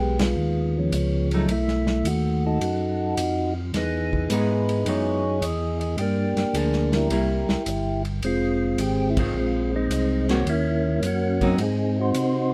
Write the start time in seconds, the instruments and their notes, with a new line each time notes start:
Already playing: tonewheel organ B1 G#3 B3 G4
0.19 tonewheel organ G#3 B3 F4, snare, ride
0.36 tonewheel organ D#2
0.77 tonewheel organ F3 G#3 C#4
0.92 tonewheel organ C#2, hi-hat pedal, ride
1.31 hollow-body jazz guitar F#3 A3 D#4, ride
1.48 tonewheel organ B1 A3 E4, ride
1.68 snare
1.87 snare
2.04 tonewheel organ D#2 F#4, hi-hat pedal, ride
2.46 tonewheel organ D#4 F#4 A4
2.61 tonewheel organ F#2, ride
3.17 tonewheel organ F2, hi-hat pedal, ride
3.74 tonewheel organ E2 B3 D#4 G#4, snare, ride
4.13 kick
4.30 tonewheel organ G#2 D#4 G#4 B4, hollow-body jazz guitar E3 G#3 B3 D#4, hi-hat pedal, ride
4.69 ride
4.86 tonewheel organ F#2 G#4 C#5, hollow-body jazz guitar E3 G#3 B3 D#4, ride
5.41 tonewheel organ E2 D#5, hi-hat pedal, ride
5.80 tonewheel organ D#5, ride
5.97 tonewheel organ G2 A#3 D4 G4, ride
6.36 tonewheel organ G2, snare, ride
6.53 tonewheel organ D2 G#4, hollow-body jazz guitar F3 A#3 D4, hi-hat pedal, ride
6.73 snare
6.92 tonewheel organ E4 G4 A#4, snare, ride
7.09 tonewheel organ C2, hollow-body jazz guitar G3 A#3 E4, ride
7.49 tonewheel organ C2, snare
7.66 tonewheel organ G1, hi-hat pedal, ride
8.05 ride
8.21 tonewheel organ F1 G#3 C4, ride
8.26 tonewheel organ F4
8.77 tonewheel organ G#1 G4, hi-hat pedal, ride
9.10 tonewheel organ E4
9.17 hollow-body jazz guitar D#3 G#3 C4, tonewheel organ G#3 C4 F4, kick, ride
9.33 tonewheel organ A#1
9.76 tonewheel organ G#3 C4 D#4
9.90 tonewheel organ C2, hi-hat pedal, ride
10.29 hollow-body jazz guitar D#3 A#3 C#4 F#4, snare, ride
10.45 tonewheel organ D#2, ride
10.49 tonewheel organ A#3 C#4 E4
11.01 tonewheel organ F#2 C#4, hi-hat pedal, ride
11.05 tonewheel organ A#3 F#4
11.41 hollow-body jazz guitar F#3 C4 D#4, kick, ride
11.57 tonewheel organ G#2 C4 D#4, ride
11.62 tonewheel organ G#4
12.00 tonewheel organ D#4 F#4 C5
12.13 tonewheel organ C3, hi-hat pedal, ride